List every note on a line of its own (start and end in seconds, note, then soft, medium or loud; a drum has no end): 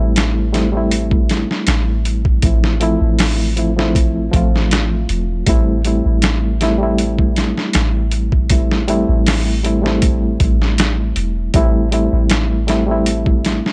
0.00 1.45 A1 loud
0.00 0.48 G3 medium
0.00 0.49 A3 medium
0.00 0.49 C4 medium
0.00 0.49 E4 medium
0.16 snare loud
0.16 closed hi-hat medium
0.52 0.68 G3 medium
0.52 0.68 A3 medium
0.52 0.69 C4 medium
0.52 0.69 E4 medium
0.52 snare soft
0.52 closed hi-hat medium
0.72 2.38 G3 medium
0.72 2.39 A3 medium
0.72 2.39 C4 medium
0.77 2.40 E4 medium
0.91 closed hi-hat medium
1.11 kick medium
1.29 snare soft
1.29 closed hi-hat medium
1.51 snare soft
1.67 2.40 A1 medium
1.67 snare loud
1.67 closed hi-hat medium
2.05 closed hi-hat medium
2.25 kick loud
2.42 2.97 A1 medium
2.42 2.76 F3 medium
2.42 2.77 A3 medium
2.42 2.77 C4 medium
2.42 2.77 E4 medium
2.42 kick loud
2.42 closed hi-hat medium
2.64 snare soft
2.80 3.52 F3 medium
2.80 3.53 A3 medium
2.80 3.53 C4 medium
2.80 3.53 E4 loud
2.80 closed hi-hat medium
3.01 4.30 A1 loud
3.19 snare loud
3.19 open hi-hat medium
3.56 3.72 F3 medium
3.56 3.72 A3 medium
3.56 3.73 C4 medium
3.56 3.73 E4 medium
3.56 closed hi-hat medium
3.77 4.29 F3 medium
3.77 4.29 A3 medium
3.77 4.30 C4 medium
3.77 4.30 E4 medium
3.77 snare medium
3.95 kick loud
3.95 closed hi-hat medium
4.31 5.06 A1 loud
4.31 5.42 F3 medium
4.31 5.42 A3 medium
4.31 5.43 C4 medium
4.31 kick medium
4.31 closed hi-hat medium
4.36 5.44 F4 medium
4.56 snare soft
4.71 snare loud
4.71 closed hi-hat medium
5.09 5.43 E1 medium
5.09 closed hi-hat medium
5.46 6.01 A1 loud
5.46 5.80 G3 medium
5.46 5.81 A3 medium
5.46 5.81 C4 medium
5.46 5.82 E4 loud
5.46 kick loud
5.46 closed hi-hat loud
5.85 6.56 G3 medium
5.85 6.57 A3 medium
5.85 6.57 C4 medium
5.85 6.58 E4 medium
5.85 closed hi-hat medium
6.06 7.53 A1 loud
6.22 snare loud
6.22 closed hi-hat medium
6.61 6.76 G3 medium
6.61 6.76 A3 medium
6.61 6.77 C4 medium
6.61 6.77 E4 loud
6.61 snare soft
6.61 closed hi-hat medium
6.78 8.45 G3 medium
6.78 8.46 A3 medium
6.78 8.47 C4 medium
6.83 8.47 E4 medium
6.98 closed hi-hat medium
7.19 kick medium
7.36 snare soft
7.36 closed hi-hat medium
7.58 snare soft
7.73 9.05 A1 medium
7.73 snare loud
7.73 closed hi-hat medium
8.11 closed hi-hat medium
8.32 kick medium
8.50 8.84 G3 medium
8.50 8.84 A3 medium
8.50 8.85 C4 medium
8.50 8.85 E4 medium
8.50 kick loud
8.50 closed hi-hat medium
8.71 snare soft
8.88 9.60 G3 medium
8.88 9.60 A3 medium
8.88 9.60 C4 medium
8.88 9.61 E4 loud
8.88 closed hi-hat medium
9.09 10.37 A1 loud
9.26 snare loud
9.26 open hi-hat medium
9.63 9.79 G3 medium
9.63 9.80 A3 medium
9.63 9.80 C4 medium
9.63 9.80 E4 medium
9.63 closed hi-hat medium
9.82 11.49 G3 medium
9.82 11.49 A3 medium
9.82 11.50 C4 medium
9.82 snare medium
9.87 11.51 E4 medium
10.02 kick loud
10.02 closed hi-hat medium
10.40 11.13 A1 loud
10.40 kick loud
10.40 closed hi-hat medium
10.62 snare soft
10.78 snare loud
10.78 closed hi-hat medium
11.16 11.50 E1 medium
11.16 closed hi-hat medium
11.54 12.08 A1 loud
11.54 11.88 G3 medium
11.54 11.88 A3 medium
11.54 11.88 C4 medium
11.54 11.89 E4 loud
11.54 kick loud
11.54 closed hi-hat medium
11.91 12.63 G3 medium
11.91 12.64 A3 medium
11.91 12.64 C4 medium
11.91 12.65 E4 medium
11.91 closed hi-hat medium
12.13 13.61 A1 loud
12.30 snare loud
12.30 closed hi-hat medium
12.67 12.83 G3 medium
12.67 12.83 A3 medium
12.67 12.84 C4 medium
12.67 12.84 E4 medium
12.67 snare soft
12.67 closed hi-hat medium
12.87 13.73 G3 medium
12.87 13.73 A3 medium
12.87 13.73 C4 medium
12.91 13.73 E4 loud
13.06 closed hi-hat medium
13.26 kick medium
13.45 snare medium
13.45 closed hi-hat medium
13.66 snare soft